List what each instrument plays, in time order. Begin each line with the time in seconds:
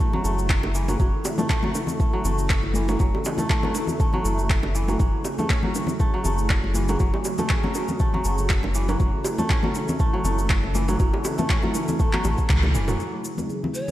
Already playing: analog synth pad C#3 F#3 A3 E4 G#4, kora E3 F#3
0.00 kora A3, kick, cabasa
0.13 kora F#3, muted conga, high conga, low conga
0.25 sub bass F#1, kora A3, cabasa
0.39 muted conga, cabasa
0.50 kick, clap, cabasa
0.63 high bongo, low bongo, muted conga
0.75 kora E3, cabasa
0.88 kora F#3, low bongo, high conga, cabasa
1.00 sub bass F#1, analog synth pad E3 A3 A4, kora F#3, kick, muted conga, cabasa
1.24 high bongo, muted conga, cabasa
1.38 kora A3, low bongo, high conga, low conga, cabasa
1.50 kora A3, kick, clap, muted conga, cabasa
1.63 kora F#3, high conga, low conga
1.75 low bongo, muted conga, cabasa
1.87 low conga, cabasa
2.00 kora A3, kick, cabasa
2.13 kora F#3, muted conga
2.25 sub bass F#1, kora A3, low conga, cabasa
2.38 muted conga, cabasa
2.50 kick, clap, cabasa
2.63 muted conga, high conga
2.74 kora E3, high conga, cabasa
2.89 kora F#3, low bongo, cabasa
2.99 sub bass F#1, kora F#3, kick, muted conga, cabasa
3.15 high bongo
3.24 high bongo, muted conga, cabasa
3.38 kora A3, low bongo, high conga, low conga, cabasa
3.49 kora A3, kick, clap, muted conga, cabasa
3.63 kora F#3, low bongo, high conga, low conga
3.75 low bongo, muted conga, cabasa
3.87 high conga, low conga, cabasa
4.00 kora A3, kick, cabasa
4.13 kora F#3, muted conga, high conga, low conga
4.25 sub bass F#1, kora A3, cabasa
4.38 muted conga, cabasa
4.50 kick, clap, cabasa
4.63 high bongo, low bongo, muted conga
4.75 kora E3, cabasa
4.88 kora F#3, low bongo, high conga, cabasa
4.99 sub bass F#1, analog synth pad C#3 F#3 G#4, kora F#3, kick, muted conga, cabasa
5.24 high bongo, muted conga, cabasa
5.38 kora A3, low bongo, high conga, low conga, cabasa
5.50 kora C#4, kick, clap, muted conga, cabasa
5.63 kora F#3, high conga, low conga
5.75 low bongo, muted conga, cabasa
5.87 low conga, cabasa
6.00 kora A3, kick, cabasa
6.14 kora F#3, muted conga
6.25 sub bass F#1, kora A3, low conga, cabasa
6.38 muted conga, cabasa
6.50 kick, clap, cabasa
6.63 muted conga, high conga
6.74 kora E3, high conga, cabasa
6.88 kora F#3, low bongo, cabasa
7.00 sub bass F#1, kora F#3, analog synth pad F#4, kick, muted conga, cabasa
7.14 high bongo
7.25 high bongo, muted conga, cabasa
7.38 kora A3, low bongo, high conga, low conga, cabasa
7.49 kora C#4, kick, clap, muted conga, cabasa
7.63 kora F#3, low bongo, high conga, low conga
7.74 low bongo, muted conga, cabasa
7.88 high conga, low conga, cabasa
8.00 kora A3, kick, cabasa
8.13 kora F#3, muted conga, high conga, low conga
8.24 sub bass F#1, kora A3, cabasa
8.38 muted conga, cabasa
8.49 kick, clap, cabasa
8.63 high bongo, low bongo, muted conga
8.75 kora E3, cabasa
8.88 kora F#3, low bongo, high conga, cabasa
9.00 sub bass F#1, analog synth pad E3 A3 E4 A4, kora F#3, kick, muted conga, cabasa
9.24 high bongo, muted conga, cabasa
9.38 kora A3, low bongo, high conga, low conga, cabasa
9.50 kora C#4, kick, clap, muted conga, cabasa
9.63 kora F#3, high conga, low conga
9.75 low bongo, muted conga, cabasa
9.88 low conga, cabasa
10.00 kora A3, kick, cabasa
10.13 kora F#3, muted conga
10.25 sub bass F#1, kora A3, low conga, cabasa
10.39 muted conga, cabasa
10.50 kick, clap, cabasa
10.64 muted conga, high conga
10.75 kora E3, high conga, cabasa
10.88 kora F#3, low bongo, cabasa
11.00 sub bass F#1, kora F#3, kick, muted conga, cabasa
11.14 high bongo
11.24 high bongo, muted conga, cabasa
11.38 kora A3, low bongo, high conga, low conga, cabasa
11.50 kora C#4, kick, clap, cabasa
11.63 kora F#3, low bongo, high conga, low conga
11.74 low bongo, muted conga, cabasa
11.88 high conga, low conga, cabasa
11.99 kora A3, kick, cabasa
12.13 kora F#3, clap, muted conga, high conga, low conga
12.24 sub bass A1, kora A3, high tom, high bongo, cabasa
12.38 kick, muted conga, cabasa
12.49 sub bass C#2, kick, clap, mid tom, cabasa
12.63 mid tom, high bongo, low bongo, muted conga
12.74 sub bass E1, kora E3, mid tom, cabasa
12.88 kora F#3, mid tom, low bongo, high conga, cabasa
13.00 analog synth pad C#3 F#3 A3 E4 G#4, muted conga, cabasa
13.25 muted conga, cabasa
13.38 high conga, low conga, cabasa
13.50 muted conga, cabasa
13.64 low conga
13.74 pan flute C#5, muted conga, cabasa